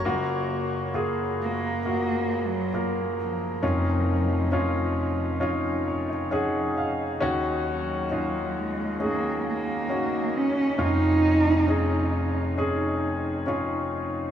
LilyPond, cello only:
\new Staff \with { instrumentName = "Cello" } { \time 4/4 \key fis \major \tempo 4 = 67 r4. ais8~ \tuplet 3/2 { ais4 fis8~ } fis8 eis8~ | eis2.~ eis8 r8 | r8 fis4 gis8 ais8 ais4 cis'8 | dis'4. r2 r8 | }